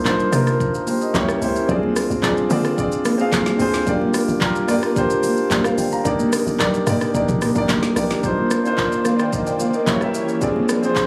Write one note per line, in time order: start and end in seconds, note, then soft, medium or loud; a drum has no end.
0.00 0.28 C2 medium
0.00 0.04 A#3 medium
0.00 0.27 A#3 medium
0.00 0.05 D4 medium
0.00 0.06 D#4 medium
0.00 0.07 F4 medium
0.00 0.07 C5 medium
0.05 0.27 D4 medium
0.05 0.27 D#4 medium
0.05 0.28 F4 medium
0.05 0.28 C5 medium
0.05 kick medium
0.05 clap medium
0.05 low conga medium
0.05 shaker medium
0.20 shaker medium
0.31 0.56 C3 loud
0.31 0.54 A#3 medium
0.31 0.54 D4 medium
0.31 0.55 D#4 medium
0.31 0.55 F4 medium
0.31 0.56 A#4 medium
0.31 cross-stick medium
0.31 open hi-hat medium
0.31 high conga medium
0.31 shaker medium
0.47 cross-stick medium
0.47 shaker soft
0.60 kick loud
0.60 shaker medium
0.74 0.87 F4 medium
0.74 0.87 A#4 medium
0.74 shaker medium
0.87 1.01 G4 medium
0.87 1.01 C5 medium
0.87 open hi-hat medium
0.87 high conga medium
0.87 shaker medium
1.01 1.28 A#4 medium
1.01 1.27 D#5 medium
1.01 shaker medium
1.13 1.38 C#2 loud
1.13 1.36 A#3 medium
1.13 1.36 C#4 medium
1.13 1.36 E4 medium
1.13 1.37 G4 medium
1.13 1.37 C#5 loud
1.13 kick medium
1.13 clap medium
1.13 high conga medium
1.13 low conga medium
1.13 shaker medium
1.28 cross-stick loud
1.28 high conga medium
1.28 shaker medium
1.40 1.66 C#2 medium
1.40 1.63 A#3 medium
1.40 1.63 C#4 medium
1.40 1.64 E4 medium
1.40 1.64 G4 medium
1.40 1.65 C5 medium
1.40 open hi-hat medium
1.40 shaker loud
1.56 shaker medium
1.68 2.05 D2 loud
1.68 2.12 C4 medium
1.68 2.13 D4 medium
1.68 2.13 F4 medium
1.68 2.13 G#4 medium
1.68 2.14 D5 loud
1.68 kick loud
1.68 low conga medium
1.68 shaker medium
1.83 high conga medium
1.96 cross-stick loud
1.96 open hi-hat medium
1.96 high conga medium
1.96 shaker loud
2.10 2.46 D2 medium
2.10 shaker medium
2.22 2.45 C4 medium
2.22 2.45 D4 medium
2.22 2.46 F4 medium
2.22 2.46 G#4 medium
2.22 2.46 D5 medium
2.22 kick medium
2.22 clap medium
2.22 low conga medium
2.22 shaker medium
2.37 shaker medium
2.49 2.75 D3 loud
2.49 2.72 C4 medium
2.49 2.72 D4 medium
2.49 2.73 F4 medium
2.49 2.73 G#4 medium
2.49 2.74 D5 loud
2.49 open hi-hat medium
2.49 high conga medium
2.49 shaker medium
2.64 cross-stick medium
2.64 shaker soft
2.76 3.10 C4 medium
2.76 3.10 D4 medium
2.76 3.11 F4 medium
2.76 3.11 G#4 medium
2.76 3.12 D5 loud
2.76 kick loud
2.76 shaker medium
2.92 shaker medium
3.05 cross-stick loud
3.05 open hi-hat medium
3.05 high conga medium
3.05 shaker medium
3.18 3.51 C4 medium
3.18 3.51 D4 medium
3.18 3.52 F4 medium
3.18 3.52 G#4 medium
3.18 3.53 F5 loud
3.18 shaker medium
3.32 kick medium
3.32 snare medium
3.32 clap loud
3.32 high conga medium
3.32 low conga medium
3.32 shaker medium
3.46 snare medium
3.46 high conga medium
3.46 shaker medium
3.58 3.84 D2 medium
3.58 3.81 C4 medium
3.58 3.81 D4 medium
3.58 3.82 F4 medium
3.58 3.82 G#4 medium
3.58 3.83 C5 loud
3.58 open hi-hat medium
3.58 shaker medium
3.74 snare medium
3.74 shaker medium
3.85 4.24 G1 loud
3.85 4.30 A#3 medium
3.85 4.31 D4 medium
3.85 4.31 F4 medium
3.85 4.31 G4 medium
3.85 4.32 D5 loud
3.85 kick loud
3.85 low conga medium
3.85 shaker medium
4.01 high conga medium
4.14 cross-stick loud
4.14 open hi-hat medium
4.14 high conga medium
4.14 shaker loud
4.28 4.70 G1 loud
4.28 shaker medium
4.40 4.63 A#3 medium
4.40 4.63 D4 medium
4.40 4.64 F4 medium
4.40 4.64 G4 medium
4.40 4.64 A#4 loud
4.40 kick medium
4.40 clap medium
4.40 low conga medium
4.40 shaker medium
4.55 shaker medium
4.68 4.93 G2 loud
4.68 4.90 A#3 medium
4.68 4.91 D4 medium
4.68 4.91 F4 medium
4.68 4.91 G4 medium
4.68 4.92 D5 loud
4.68 cross-stick medium
4.68 open hi-hat medium
4.68 high conga medium
4.68 shaker medium
4.83 cross-stick medium
4.83 shaker soft
4.95 5.28 A#3 medium
4.95 5.29 D4 medium
4.95 5.29 F4 medium
4.95 5.24 G4 medium
4.95 5.24 C5 medium
4.95 kick loud
4.95 shaker medium
5.10 shaker medium
5.23 open hi-hat medium
5.23 high conga medium
5.23 shaker medium
5.37 shaker medium
5.51 5.75 G1 loud
5.51 5.64 G4 medium
5.51 5.64 D5 medium
5.51 kick medium
5.51 clap loud
5.51 high conga medium
5.51 low conga medium
5.51 shaker medium
5.64 5.78 C5 medium
5.64 5.77 F5 medium
5.64 cross-stick loud
5.64 high conga medium
5.64 shaker medium
5.78 6.02 G1 medium
5.78 5.92 D5 medium
5.78 5.92 G5 medium
5.78 open hi-hat medium
5.78 shaker medium
5.92 6.18 F5 medium
5.92 6.18 A#5 medium
5.92 shaker medium
6.04 6.42 G1 loud
6.04 6.49 A#3 medium
6.04 6.49 D4 medium
6.04 6.49 D#4 medium
6.04 6.50 G4 medium
6.04 6.50 D5 loud
6.04 kick loud
6.04 low conga medium
6.04 shaker medium
6.19 high conga medium
6.19 shaker medium
6.32 cross-stick loud
6.32 open hi-hat medium
6.32 high conga medium
6.32 shaker loud
6.47 6.82 G1 loud
6.47 shaker medium
6.59 6.81 A#3 medium
6.59 6.82 D4 medium
6.59 6.82 D#4 medium
6.59 6.82 G4 medium
6.59 6.83 D5 loud
6.59 kick medium
6.59 clap medium
6.59 low conga medium
6.59 shaker medium
6.74 shaker medium
6.86 7.11 G2 loud
6.86 7.08 A#3 medium
6.86 7.09 D4 medium
6.86 7.09 D#4 medium
6.86 7.10 G4 medium
6.86 7.10 D5 loud
6.86 cross-stick medium
6.86 open hi-hat medium
6.86 high conga medium
6.86 shaker medium
7.01 cross-stick medium
7.01 shaker soft
7.13 7.27 G1 loud
7.13 7.47 A#3 medium
7.13 7.47 D4 medium
7.13 7.47 D#4 medium
7.13 7.48 G4 medium
7.13 7.48 D5 medium
7.13 kick loud
7.13 shaker medium
7.28 7.40 A#1 medium
7.28 mid tom loud
7.28 shaker medium
7.42 cross-stick loud
7.42 open hi-hat medium
7.42 high conga medium
7.42 shaker medium
7.55 7.67 G1 loud
7.55 7.88 A#3 medium
7.55 7.88 D4 medium
7.55 7.88 D#4 medium
7.55 7.89 G4 medium
7.55 7.89 D5 loud
7.55 kick loud
7.55 shaker medium
7.69 7.81 G1 loud
7.69 kick medium
7.69 snare medium
7.69 clap medium
7.69 high conga medium
7.69 low conga medium
7.69 shaker medium
7.83 snare medium
7.83 high conga medium
7.83 shaker medium
7.95 8.09 A#1 loud
7.95 8.18 A#3 medium
7.95 8.18 D4 medium
7.95 8.18 D#4 medium
7.95 8.19 G4 medium
7.95 8.19 D5 loud
7.95 cross-stick medium
7.95 open hi-hat medium
7.95 shaker loud
8.10 8.22 G1 medium
8.10 snare medium
8.10 shaker medium
8.22 9.85 D#3 medium
8.22 8.56 A#3 medium
8.22 10.39 A#3 medium
8.22 8.56 D4 medium
8.22 8.56 D#4 medium
8.22 9.85 F4 medium
8.22 8.57 F4 medium
8.22 9.85 C5 medium
8.22 8.57 C5 medium
8.22 9.85 D5 medium
8.22 kick loud
8.22 low conga medium
8.22 shaker medium
8.38 high conga medium
8.51 cross-stick loud
8.51 high conga medium
8.51 shaker loud
8.64 8.97 A#3 medium
8.64 8.97 D4 medium
8.64 8.98 D#4 medium
8.64 8.98 F4 medium
8.64 8.98 C5 medium
8.64 shaker medium
8.78 kick medium
8.78 clap medium
8.78 shaker medium
8.92 shaker medium
9.05 9.19 C5 medium
9.05 9.19 F5 medium
9.05 cross-stick medium
9.05 high conga medium
9.05 shaker medium
9.19 9.32 D5 medium
9.19 9.32 G5 medium
9.19 cross-stick medium
9.19 shaker soft
9.33 9.46 A#4 medium
9.33 9.46 D#5 medium
9.33 kick loud
9.33 shaker medium
9.47 9.60 D5 medium
9.47 9.59 G5 medium
9.47 shaker medium
9.60 9.74 C5 medium
9.60 9.73 F5 medium
9.60 high conga medium
9.60 shaker medium
9.74 10.00 A#4 medium
9.74 10.00 D#5 medium
9.74 shaker medium
9.86 10.41 E3 medium
9.86 9.98 A#3 medium
9.86 9.98 C#4 medium
9.86 10.41 C#4 medium
9.86 9.98 E4 medium
9.86 10.41 G4 medium
9.86 9.99 G4 medium
9.86 10.41 C#5 medium
9.86 9.99 C#5 loud
9.86 kick medium
9.86 clap loud
9.86 high conga medium
9.86 low conga medium
9.86 shaker medium
10.00 10.33 A#3 medium
10.00 10.33 C#4 medium
10.00 10.34 E4 medium
10.00 10.34 G4 medium
10.00 10.35 E5 loud
10.00 cross-stick medium
10.00 high conga medium
10.00 shaker medium
10.14 shaker medium
10.28 shaker medium
10.40 11.07 F3 medium
10.40 10.74 C4 medium
10.40 11.07 C4 medium
10.40 10.74 D4 medium
10.40 10.75 F4 medium
10.40 11.07 G#4 medium
10.40 10.75 G#4 medium
10.40 11.07 D5 medium
10.40 10.75 D5 medium
10.40 kick loud
10.40 low conga medium
10.40 shaker medium
10.56 high conga medium
10.69 cross-stick loud
10.69 high conga medium
10.69 shaker loud
10.82 11.07 C4 medium
10.82 11.07 D4 medium
10.82 11.07 F4 medium
10.82 11.07 G#4 medium
10.82 11.07 C5 medium
10.82 shaker medium
10.96 kick medium
10.96 clap medium
10.96 shaker medium